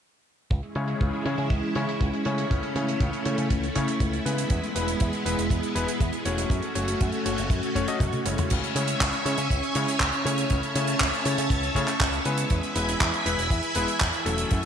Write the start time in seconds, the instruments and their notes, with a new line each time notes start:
0.50 picked electric bass C#2, string machine G#3 C#4 E4, kick, closed hi-hat
0.63 closed hi-hat
0.75 picked electric bass C#3, electric grand piano C#3 G#3 C#4 E4 C#5, closed hi-hat
0.88 closed hi-hat
1.00 picked electric bass C#2, kick, closed hi-hat
1.13 closed hi-hat
1.25 picked electric bass C#3, electric grand piano C#3 G#3 C#4 E4 C#5, closed hi-hat
1.38 picked electric bass C#3, closed hi-hat
1.50 picked electric bass C#2, kick, closed hi-hat
1.63 closed hi-hat
1.75 picked electric bass C#3, electric grand piano C#3 G#3 C#4 E4 C#5, closed hi-hat
1.89 closed hi-hat
2.01 picked electric bass C#2, kick, closed hi-hat
2.13 closed hi-hat
2.25 picked electric bass C#3, electric grand piano C#3 A3 C#4 E4 C#5, closed hi-hat
2.38 closed hi-hat
2.51 picked electric bass C#2, string machine A3 E4, kick, closed hi-hat
2.63 closed hi-hat
2.75 picked electric bass C#3, electric grand piano C#3 A3 C#4 E4 C#5, closed hi-hat
2.89 closed hi-hat
3.00 picked electric bass C#2, kick, closed hi-hat
3.13 closed hi-hat
3.25 electric grand piano C#3 A3 C#4 E4 C#5, picked electric bass C#3, closed hi-hat
3.38 picked electric bass C#3, closed hi-hat
3.50 picked electric bass C#2, kick, closed hi-hat
3.64 closed hi-hat
3.76 electric grand piano C#3 A3 C#4 E4 C#5, picked electric bass C#3, kick, closed hi-hat
3.88 closed hi-hat
4.00 picked electric bass C#2, kick, closed hi-hat
4.13 closed hi-hat
4.25 picked electric bass C#3, electric grand piano G#3 B3 E4 B4, closed hi-hat
4.38 closed hi-hat
4.50 picked electric bass E2, string machine G#3 B3, kick, closed hi-hat
4.63 closed hi-hat
4.75 picked electric bass E1, electric grand piano G#3 B3 E4 B4, closed hi-hat
4.88 closed hi-hat
5.00 picked electric bass E2, kick, closed hi-hat
5.13 closed hi-hat
5.25 picked electric bass E1, electric grand piano G#3 B3 E4 B4, closed hi-hat
5.38 picked electric bass E1, closed hi-hat
5.50 picked electric bass E2, kick, closed hi-hat
5.63 closed hi-hat
5.75 picked electric bass E1, electric grand piano G#3 B3 E4 B4, closed hi-hat
5.88 closed hi-hat
6.00 picked electric bass E2, kick, closed hi-hat
6.13 closed hi-hat
6.25 picked electric bass E1, electric grand piano A3 C#4 F#4 C#5, closed hi-hat
6.38 closed hi-hat
6.50 picked electric bass F#2, string machine A3 C#4 F#4, kick, closed hi-hat
6.62 closed hi-hat
6.75 picked electric bass F#1, electric grand piano A3 C#4 F#4 C#5, closed hi-hat
6.88 closed hi-hat
7.01 picked electric bass F#2, kick, closed hi-hat
7.12 closed hi-hat
7.25 picked electric bass F#1, electric grand piano A3 C#4 F#4 C#5, closed hi-hat
7.38 picked electric bass F#1, closed hi-hat
7.50 picked electric bass F#2, kick, closed hi-hat
7.63 closed hi-hat
7.75 picked electric bass F#1, electric grand piano A3 C#4 F#4 C#5, kick, closed hi-hat
7.88 electric grand piano A3 C#4 F#4 D#5, closed hi-hat
8.00 picked electric bass F#2, kick, closed hi-hat, high tom
8.13 closed hi-hat, high tom
8.25 picked electric bass F#1, electric grand piano C#3 G#3 C#4 E4 C#5, closed hi-hat
8.38 closed hi-hat, mid tom
8.50 picked electric bass C#2, string machine C#4 C#5 E5 G#5, kick, closed hi-hat, crash
8.64 closed hi-hat
8.75 picked electric bass C#3, electric grand piano C#3 G#3 C#4 E4 C#5, closed hi-hat
8.88 closed hi-hat
9.00 picked electric bass C#2, kick, clap, closed hi-hat
9.13 closed hi-hat
9.25 picked electric bass C#3, electric grand piano C#3 G#3 C#4 E4 C#5, closed hi-hat
9.38 picked electric bass C#3, closed hi-hat
9.50 picked electric bass C#2, kick, closed hi-hat
9.63 closed hi-hat
9.75 picked electric bass C#3, electric grand piano C#3 G#3 C#4 E4 C#5, closed hi-hat
9.88 closed hi-hat
10.00 picked electric bass C#2, kick, clap, closed hi-hat
10.13 closed hi-hat
10.25 picked electric bass C#3, electric grand piano C#3 A3 C#4 E4 C#5, closed hi-hat
10.38 closed hi-hat
10.50 picked electric bass C#2, string machine C#5 E5 A5, kick, closed hi-hat
10.63 closed hi-hat
10.75 picked electric bass C#3, electric grand piano C#3 A3 C#4 E4 C#5, closed hi-hat
10.88 closed hi-hat
11.00 picked electric bass C#2, kick, clap, closed hi-hat
11.14 closed hi-hat
11.25 picked electric bass C#3, electric grand piano C#3 A3 C#4 E4 C#5, closed hi-hat
11.38 picked electric bass C#3, closed hi-hat
11.50 picked electric bass C#2, kick, closed hi-hat
11.63 closed hi-hat
11.75 picked electric bass C#3, electric grand piano C#3 A3 C#4 E4 C#5, kick, closed hi-hat
11.88 clap, closed hi-hat
12.00 picked electric bass C#2, kick, clap, closed hi-hat
12.13 closed hi-hat
12.25 picked electric bass C#3, electric grand piano G#3 B3 E4 B4, closed hi-hat
12.38 closed hi-hat
12.50 picked electric bass E2, string machine E4 E5 G#5 B5, kick, closed hi-hat
12.63 closed hi-hat
12.75 picked electric bass E1, electric grand piano G#3 B3 E4 B4, closed hi-hat
12.89 closed hi-hat
13.01 picked electric bass E2, kick, clap, closed hi-hat
13.14 closed hi-hat
13.25 picked electric bass E1, electric grand piano G#3 B3 E4 B4, closed hi-hat
13.38 picked electric bass E1, closed hi-hat
13.50 picked electric bass E2, kick, closed hi-hat
13.63 closed hi-hat
13.75 picked electric bass E1, electric grand piano G#3 B3 E4 B4, closed hi-hat
13.88 closed hi-hat
14.00 picked electric bass E2, kick, clap, closed hi-hat
14.13 closed hi-hat
14.25 picked electric bass E1, electric grand piano F#3 A3 C#4 A4, closed hi-hat
14.38 closed hi-hat
14.50 picked electric bass F#2, string machine F#4 F#5 A5 C#6, kick, closed hi-hat